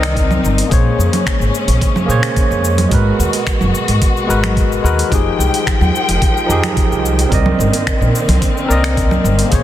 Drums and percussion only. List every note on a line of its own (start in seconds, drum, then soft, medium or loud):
0.03 finger snap medium
0.03 open hi-hat medium
0.03 shaker soft
0.16 kick loud
0.16 open hi-hat soft
0.16 shaker soft
0.31 low conga medium
0.31 shaker soft
0.45 shaker medium
0.58 open hi-hat medium
0.58 shaker soft
0.71 kick loud
0.71 open hi-hat soft
0.71 shaker soft
1.00 shaker medium
1.13 open hi-hat soft
1.13 low conga medium
1.13 shaker soft
1.26 finger snap medium
1.26 kick loud
1.26 open hi-hat soft
1.26 shaker soft
1.42 shaker soft
1.55 shaker medium
1.68 open hi-hat soft
1.68 shaker soft
1.81 kick loud
1.81 open hi-hat soft
1.81 shaker soft
1.96 low conga medium
1.96 shaker soft
2.10 shaker medium
2.23 finger snap medium
2.23 open hi-hat soft
2.23 shaker soft
2.36 kick loud
2.36 open hi-hat soft
2.36 shaker soft
2.51 shaker soft
2.65 shaker medium
2.78 open hi-hat soft
2.78 low conga medium
2.78 shaker soft
2.91 kick loud
2.91 open hi-hat soft
2.91 shaker soft
3.20 shaker medium
3.33 open hi-hat soft
3.33 shaker soft
3.47 finger snap medium
3.47 kick loud
3.47 open hi-hat soft
3.47 shaker soft
3.61 low conga medium
3.61 shaker soft
3.75 shaker medium
3.88 open hi-hat soft
3.88 shaker soft
4.02 kick loud
4.02 open hi-hat soft
4.02 shaker soft
4.17 shaker soft
4.30 shaker medium
4.44 finger snap medium
4.44 open hi-hat medium
4.44 low conga medium
4.44 shaker soft
4.57 kick loud
4.57 open hi-hat soft
4.57 shaker soft
4.72 shaker soft
4.86 shaker medium
4.99 open hi-hat soft
4.99 shaker soft
5.12 kick loud
5.12 open hi-hat soft
5.12 shaker soft
5.41 shaker medium
5.54 open hi-hat soft
5.54 shaker soft
5.67 finger snap medium
5.67 kick medium
5.67 open hi-hat soft
5.67 shaker soft
5.81 low conga medium
5.81 shaker soft
5.96 shaker medium
6.09 open hi-hat medium
6.09 shaker soft
6.22 kick loud
6.22 open hi-hat soft
6.22 shaker soft
6.37 shaker soft
6.50 shaker medium
6.64 finger snap medium
6.64 open hi-hat soft
6.64 low conga medium
6.64 shaker soft
6.77 kick medium
6.77 open hi-hat soft
6.77 shaker soft
6.92 shaker soft
7.05 shaker medium
7.19 open hi-hat soft
7.19 shaker soft
7.32 kick loud
7.32 open hi-hat soft
7.32 shaker soft
7.46 low conga medium
7.60 shaker medium
7.73 open hi-hat medium
7.73 shaker soft
7.87 finger snap medium
7.87 kick medium
7.87 open hi-hat soft
7.87 shaker soft
8.02 shaker soft
8.15 shaker medium
8.29 open hi-hat medium
8.29 low conga medium
8.29 shaker soft
8.42 kick medium
8.42 open hi-hat soft
8.42 shaker soft
8.57 shaker soft
8.71 shaker medium
8.84 finger snap medium
8.84 open hi-hat medium
8.84 shaker soft
8.97 kick loud
8.97 open hi-hat soft
8.97 shaker soft
9.11 low conga medium
9.11 shaker soft
9.25 shaker medium
9.39 open hi-hat soft
9.39 shaker soft
9.52 kick medium
9.52 open hi-hat soft
9.52 shaker soft